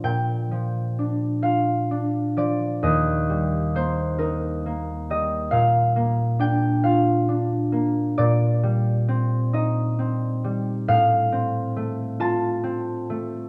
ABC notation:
X:1
M:6/8
L:1/8
Q:3/8=45
K:Bb
V:1 name="Harp"
[dg]3 f2 d | e2 c B2 e | f2 g f3 | d3 e3 |
f3 a3 |]
V:2 name="Harp"
[B,,F,B,DF] F, D F D F, | E,, G, B, E B, G, | B,, B, D F D B, | B,, G, C E C G, |
A,, C A, F C A, |]